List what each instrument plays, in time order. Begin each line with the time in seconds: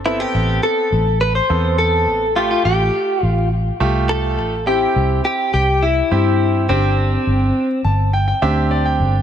Already playing: fingered electric bass G1
0.05 grand piano B3 C4 A4, clean electric guitar E4
0.20 clean electric guitar G4
0.34 fingered electric bass A1
0.63 clean electric guitar A4
0.92 fingered electric bass A1
1.21 clean electric guitar B4
1.35 clean electric guitar C5
1.49 fingered electric bass E2, grand piano B3 C4 A4
1.78 clean electric guitar A4
2.07 fingered electric bass A1
2.36 grand piano A3 F4 G4, clean electric guitar F4
2.51 clean electric guitar F4
2.65 fingered electric bass A1, clean electric guitar G4
3.23 fingered electric bass A1, clean electric guitar F4
3.80 fingered electric bass C2, grand piano A3 F4 G4
4.09 clean electric guitar A4
4.38 fingered electric bass A1
4.67 grand piano C4 E4 G4, clean electric guitar G4
4.96 fingered electric bass C2
5.25 clean electric guitar G4
5.54 fingered electric bass C2, clean electric guitar G4
5.83 clean electric guitar E4
6.11 fingered electric bass G2, grand piano C4 E4 G4
6.69 fingered electric bass G1, grand piano C4 D4 G4, clean electric guitar C4
7.27 fingered electric bass G1
7.84 fingered electric bass G1, grand piano A5
8.13 grand piano G5
8.28 grand piano G5
8.42 fingered electric bass D2, grand piano C4 D4 G4 E5
8.71 grand piano D5
8.85 grand piano G5
9.00 fingered electric bass G1